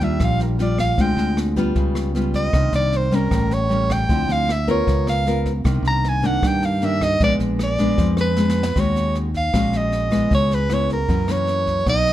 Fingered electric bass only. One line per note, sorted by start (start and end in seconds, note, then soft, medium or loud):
0.00 0.16 D#2 medium
0.20 0.94 A#1 loud
0.98 1.16 D2 medium
1.17 1.71 D2 loud
1.76 2.49 C#2 loud
2.53 2.71 C2 medium
2.73 3.27 C2 medium
3.31 4.05 A1 loud
4.09 4.27 D2 loud
4.28 4.82 D2 medium
4.87 5.61 C#2 loud
5.65 5.82 C2 medium
5.82 6.37 C2 medium
6.42 7.16 G2 loud
7.20 7.38 A#1 loud
7.39 7.93 A#1 medium
7.98 8.71 F2 loud
8.76 9.49 D#2 medium
9.54 10.27 A#1 medium
10.31 11.04 C#2 medium
11.09 11.82 F#2 medium
11.87 12.13 B1 medium